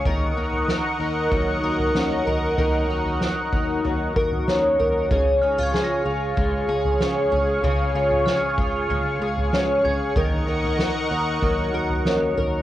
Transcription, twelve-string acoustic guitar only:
X:1
M:4/4
L:1/16
Q:1/4=95
K:Ebdor
V:1 name="Twelve-string acoustic guitar"
[E,B]2 E2 B2 E2 G,2 B2 D2 B2 | [E,B]2 E2 B2 E2 G,2 B2 D2 B2 | [D,A]2 E F A2 F2 A,2 A2 D2 A2 | [D,A]2 F2 A2 F2 A,2 A2 D2 A2 |
[E,B]2 E2 B2 E2 G,2 B2 D2 B2 |]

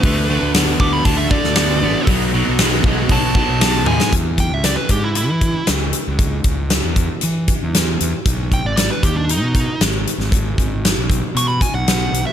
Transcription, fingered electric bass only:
X:1
M:4/4
L:1/16
Q:1/4=116
K:Bdor
V:1 name="Fingered electric bass" clef=bass
D,,3 D,,3 D,,2 D,,2 z D,,3 A,,, z | B,,,3 B,,,3 B,,,2 B,,,2 z B,,,3 ^D,, z | [K:E] E,,3 C,,2 z G,,3 E,2 z C,,2 z C,,- | C,,2 C,,3 E,,2 z E,2 z E,,3 E,, z |
B,,,3 G,,,2 z D,,3 B,,2 z G,,,2 z G,,,- | G,,,2 G,,,3 B,,,2 z B,,2 z B,,,3 B,,, z |]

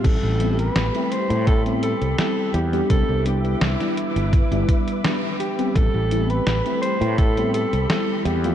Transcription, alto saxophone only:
X:1
M:4/4
L:1/16
Q:1/4=84
K:Am
V:1 name="Alto saxophone"
A3 B3 c2 A2 A2 A2 G2 | A2 G2 E8 z2 G2 | A3 B3 c2 A2 A2 A2 G2 |]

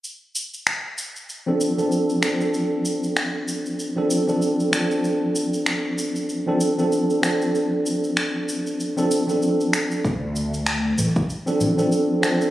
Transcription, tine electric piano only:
X:1
M:4/4
L:1/16
Q:"Swing 16ths" 1/4=96
K:Dm
V:1 name="Tine electric piano"
z8 z [F,CDA]2 [F,CDA]3 [F,CDA]2- | [F,CDA]8- [F,CDA] [F,CDA]2 [F,CDA]3 [F,CDA]2- | [F,CDA]8- [F,CDA] [F,CDA]2 [F,CDA]3 [F,CDA]2- | [F,CDA]8- [F,CDA] [F,CDA]2 [F,CDA]4- [F,CDA] |
z8 z [F,CDA]2 [F,CDA]3 [F,CDA]2 |]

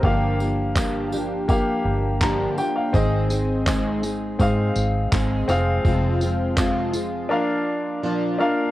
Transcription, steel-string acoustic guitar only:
X:1
M:4/4
L:1/8
Q:1/4=83
K:Gphr
V:1 name="Steel-string acoustic guitar"
[G,,D,F,B,DG] [F,B,DG] [G,,D,F,B,DG] [F,B,DG] [F,B,DG]2 [G,,D,F,B,DG] [F,B,DG] | [A,,E,A,CEA] [A,CEA] [A,,E,A,CEA] [A,CEA] [A,CEA]2 [A,,E,A,CEA] [F,A,CF] | [F,,C,F,A,CF] [F,A,CF] [F,,C,F,A,CF] [F,A,CF] [F,B,DF]2 [B,,F,B,DF] [B,DF] |]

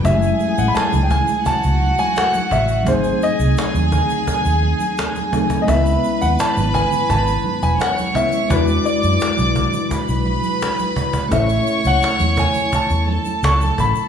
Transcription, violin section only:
X:1
M:4/4
L:1/8
Q:1/4=85
K:F#m
V:1 name="Violin section"
[Gg]4 [Ff]4 | [Gg]8 | [Bb]6 [cc']2 | [dd']4 [Bb]4 |
[cc']4- [cc'] [Aa]3 |]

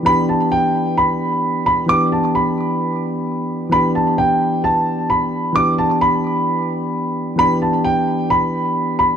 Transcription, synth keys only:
X:1
M:4/4
L:1/8
Q:1/4=131
K:Em
V:1 name="Synth keys"
[E,B,DG]8 | [E,B,DG]8 | [E,B,DG]8 | [E,B,DG]8 |
[E,B,DG]8 |]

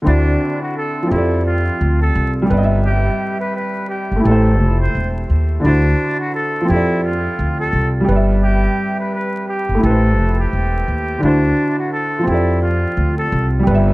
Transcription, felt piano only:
X:1
M:4/4
L:1/8
Q:"Swing 16ths" 1/4=86
K:Flyd
V:1 name="Felt piano"
[D,CE^Fd]3 [=F,CGAd]4 [G,GBd^de]- | [G,GBd^de]4 [A,EGAc]4 | [D,DE^Fc]3 [=F,CGAd]4 [G,GBde]- | [G,GBde]4 [A,EGBc]4 |
[D,DE^Fc]3 [=F,CGAd]4 [G,GBde] |]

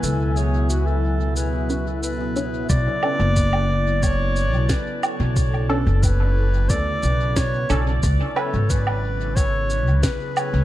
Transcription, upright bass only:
X:1
M:4/4
L:1/16
Q:1/4=90
K:Bdor
V:1 name="Upright bass" clef=bass
C,,16 | B,,, z2 F,,,8 B,,, z3 B,,,- | B,,,3 F,,,4- F,,, D,,2 B,,,4 B,,,2 | C,, z2 G,,,8 C,, z3 C,, |]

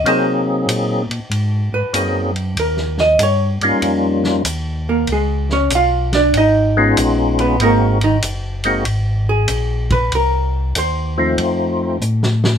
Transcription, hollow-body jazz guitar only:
X:1
M:4/4
L:1/8
Q:"Swing" 1/4=95
K:Abmix
V:1 name="Hollow-body jazz guitar"
c z4 _c3 | B e d z4 [B,B] | [A,A] [Dd] [Ff] [=D=d] [Ee]3 [_C_c] | [B,B] [E,E] z3 A2 _c |
B2 c3 z3 |]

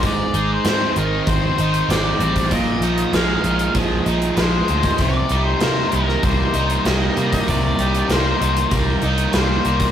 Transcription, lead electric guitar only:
X:1
M:4/4
L:1/16
Q:1/4=97
K:Cm
V:1 name="Lead electric guitar"
d3 c3 B2 c4 d4 | e4 f4 z4 c4 | d3 c3 B2 c4 e4 | d4 c4 z4 c4 |]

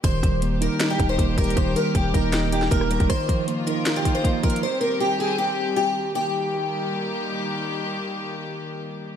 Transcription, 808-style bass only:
X:1
M:4/4
L:1/16
Q:1/4=157
K:Eb
V:1 name="808-style bass" clef=bass
E,,,2 E,,,4- E,,, z3 E,,,2 E,,,2 E,,,2 | E,,,2 z2 E,,,2 E,,,6 E,,,3 E,,, | z16 | z16 |
z16 | z16 |]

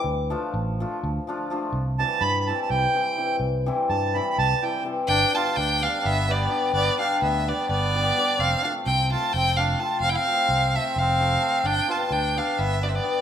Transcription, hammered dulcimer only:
X:1
M:7/8
L:1/8
Q:1/4=127
K:Gmix
V:1 name="Hammered dulcimer"
z [F,A,DF] z [F,A,DF] z [F,A,DF] [F,A,DF] | z [E,G,CE] z [E,G,CE] z [E,G,CE] [E,G,CE] | z [E,G,CE] z [E,G,CE] z [E,G,CE] [E,G,CE] | z [G,B,DG] z [G,B,DG] z [G,B,DG] [G,B,DG] |
z [G,B,DG] z [G,B,DG] z [G,B,DG] [G,B,DG] | z [A,CFA] z [A,CFA] z [A,CFA] [A,CFA] | z [A,CFA] z [A,CFA] z [A,CFA] [A,CFA] | z [B,DGB] z [B,DGB] z [B,DGB] [B,DGB] |]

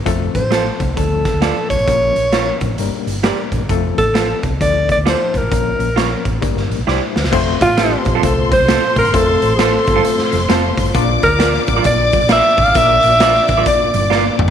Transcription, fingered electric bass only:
X:1
M:4/4
L:1/16
Q:"Swing" 1/4=132
K:F
V:1 name="Fingered electric bass" clef=bass
F,,,2 A,,,4 C,,2 D,,3 D,,2 z C,, A,,, | B,,,2 B,,,4 A,,,2 G,,, z G,,,3 z A,,, G,,, | F,,,2 A,,,4 C,,2 D,,3 D,,2 z C,, A,,, | B,,,2 B,,,4 A,,,2 G,,, G,,, A,,, B,,, C,, z D,, C,, |
F,,,2 A,,,4 B,,,2 C,,3 C,,2 z A,,, G,,, | F,,,2 A,,,4 G,,,2 z2 F,,,2 F,,,2 G,,,2 | B,,,2 D,,4 A,,,2 B,,,3 B,,,2 z A,,, A,,, | B,,,2 B,,,4 A,,,2 z2 G,,,4 G,,,2 |]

